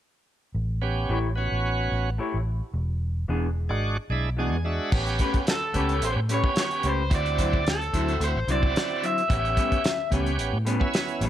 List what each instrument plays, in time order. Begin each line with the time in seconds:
0.55 fingered electric bass A1
0.82 tonewheel organ B3 C#4 G4
1.09 fingered electric bass A1, clean electric guitar A3 E4 G4 C#5
1.36 tonewheel organ B3 C#4 F#4
1.52 fingered electric bass A1
1.92 fingered electric bass A1
2.18 clean electric guitar A3 E4 G4 C#5
2.34 fingered electric bass A1
2.74 fingered electric bass E1
3.28 fingered electric bass E1, clean electric guitar E3 B3 D4 G#4
3.69 fingered electric bass G#1, tonewheel organ G#3 D4 F#4
4.10 fingered electric bass B1, tonewheel organ G#3 D4 E4
4.37 clean electric guitar E3 B3 D4 G#4, tonewheel organ G#3 D4 F#4 G#5
4.52 fingered electric bass E2
4.64 tonewheel organ G#3 D4 F#4 E5
4.92 fingered electric bass A1, tonewheel organ B3 C#4 G4, kick, crash
5.07 closed hi-hat
5.19 clean electric guitar A3 C#4 G4 B4, kick, closed hi-hat
5.34 kick, closed hi-hat
5.47 overdriven electric guitar A4, snare, closed hi-hat
5.74 fingered electric bass C#2, clean electric guitar A3 C#4 G4 B4, tonewheel organ B3 C#4 G4, kick, closed hi-hat
5.89 closed hi-hat
6.01 fingered electric bass A1, overdriven electric guitar C5, closed hi-hat
6.16 fingered electric bass A2
6.29 clean electric guitar A3 C#4 G4 B4, closed hi-hat
6.34 overdriven electric guitar C#5
6.44 tonewheel organ B3 C#4 G4, kick
6.56 snare, closed hi-hat
6.61 overdriven electric guitar C#5
6.71 closed hi-hat
6.83 fingered electric bass C#2, clean electric guitar A3 C#4 G4 B4, closed hi-hat
6.89 overdriven electric guitar C5
7.10 fingered electric bass D2, tonewheel organ C4 E4 F#4, kick, closed hi-hat
7.15 overdriven electric guitar D5
7.26 closed hi-hat
7.39 clean electric guitar D3 F#3 C4 E4, kick, closed hi-hat
7.53 kick
7.67 overdriven electric guitar A4, snare, closed hi-hat
7.82 closed hi-hat
7.93 fingered electric bass D2, clean electric guitar D3 F#3 C4 E4, tonewheel organ C4 E4 F#4, kick, closed hi-hat
8.08 closed hi-hat
8.20 fingered electric bass D2, overdriven electric guitar C5, closed hi-hat
8.35 fingered electric bass A1
8.47 fingered electric bass C2, clean electric guitar D3 F#3 C4 E4, closed hi-hat
8.52 overdriven electric guitar D5
8.62 tonewheel organ C4 E4 F#4, kick
8.76 snare, closed hi-hat
9.02 clean electric guitar D3 F#3 C4 E4, overdriven electric guitar E5, closed hi-hat
9.18 closed hi-hat
9.28 fingered electric bass A1, tonewheel organ B3 C#4 G4, kick, closed hi-hat
9.34 overdriven electric guitar E5
9.45 closed hi-hat
9.56 clean electric guitar A2 G3 B3 C#4, kick, closed hi-hat
9.72 kick, closed hi-hat
9.84 snare, closed hi-hat
10.10 fingered electric bass C#2, clean electric guitar A2 G3 B3 C#4, tonewheel organ B3 C#4 G4, kick, closed hi-hat
10.26 closed hi-hat
10.38 fingered electric bass A1, closed hi-hat
10.53 fingered electric bass A2
10.65 clean electric guitar A2 G3 B3 C#4, closed hi-hat
10.80 tonewheel organ B3 C#4 E4, kick
10.94 snare, closed hi-hat
11.08 closed hi-hat
11.21 fingered electric bass A1, clean electric guitar A2 G3 B3 C#4, closed hi-hat